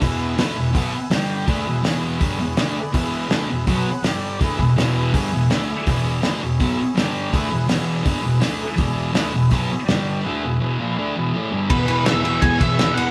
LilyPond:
<<
  \new Staff \with { instrumentName = "Lead electric guitar" } { \time 4/4 \key e \mixolydian \tempo 4 = 164 r1 | r1 | r1 | r1 |
r1 | r1 | r1 | r1 |
\key e \major b'4 e''4 gis''8 e''4 fis''8 | }
  \new Staff \with { instrumentName = "Transistor combo organ" } { \time 4/4 \key e \mixolydian <b' e'' gis''>4 <b' e'' b''>8 <b' e'' gis''>8 <b' e'' gis''>4 <g' d'' g''>4 | <gis' b' e''>4 <gis' b' cis''>8 <gis' b' e''>8 <gis' b' cis''>4 <gis' b' d''>4 | <gis' b' e''>4 <gis' b' e''>8 <gis' b' e''>8 <gis' b' fis''>4 <d' g' d''>4 | <e' gis' b'>4 <e' gis' b'>8 <e' gis' b' b''>8 <e' gis' b' gis''>4 <e' gis' d'' e''>4 |
<e' gis' d''>4 <e' gis' b'>8 <e' gis' cis''>8 <e' gis' cis''>4 <d' g' d''>4 | <e' gis' b'>4 <e' gis' cis''>8 <e' gis' d''>8 <e' gis' b'>4 <e' gis' b'>4 | <e' gis' d''>4 <e' gis' b'>8 <e' gis' b'>8 <e' gis' cis''>4 <d' g' d''>4 | <e' gis' b'>4 <e' gis' b'>8 <e' gis' b'>8 <e' gis' b'>4 <e' gis' d''>4 |
\key e \major <e' gis' b'>4 <e' gis' cis''>4 <e' gis' cis''>4 <e' gis' b'>4 | }
  \new Staff \with { instrumentName = "Distorted electric guitar" } { \clef bass \time 4/4 \key e \mixolydian <e, b, e>4 <d a d'>8 <e, b,>8 <b, fis b>8 r8 <g, d g>4 | <d a d'>8 <e, b,>8 <e, b, e>4 <g, d g>8 <e, b,>8 <d a d'>8 r8 | <e, b, e>4 <d a d'>8 <e, b,>8 <b, fis b>8 r8 <g, d g>4 | <d a d'>8 <e, b,>8 <e, b, e>4 <g, d g>8 <e, b,>8 <d a d'>8 r8 |
<e, b, e>4 <d a d'>8 <e, b,>8 <b, fis b>8 r8 <g, d g>4 | <d a d'>8 <e, b,>8 <e, b, e>4 <g, d g>8 <e, b,>8 <d a d'>8 r8 | <e, b, e>4 <d a d'>8 <e, b,>8 <b, fis b>8 r8 <g, d g>4 | <d a d'>8 <e, b,>8 <e, b, e>8 <ais, f ais>8 <d a d'>8 <e, b, e>8 <a, e a>8 <g, d g>8 |
\key e \major <e, b, e>8 <e, b, e>8 <e, b, e>8 <e, b, e>8 <e, b, e>8 <e, b, e>8 <e, b, e>8 <e, b, e>8 | }
  \new DrumStaff \with { instrumentName = "Drums" } \drummode { \time 4/4 <hho bd>4 <hho sn>4 <hho bd>4 <hho sn>4 | <hho bd>4 <hho sn>4 <hho bd>4 <hho sn>4 | <hho bd>4 <hho sn>4 <hho bd>4 <hho sn>4 | <hho bd>8 bd8 <hho sn>4 <hho bd>4 <hho sn>4 |
<hho bd>4 <hho sn>4 <hho bd>4 <hho sn>4 | <hho bd>4 <hho sn>4 <hho bd>4 <hho sn>4 | <hho bd>4 <hho sn>4 <hho bd>4 <hho sn>4 | r4 r4 r4 r4 |
<bd cymr>8 cymr8 <cymr sn>8 cymr8 <bd cymr>8 <bd cymr>8 <cymr sn>8 cymr8 | }
>>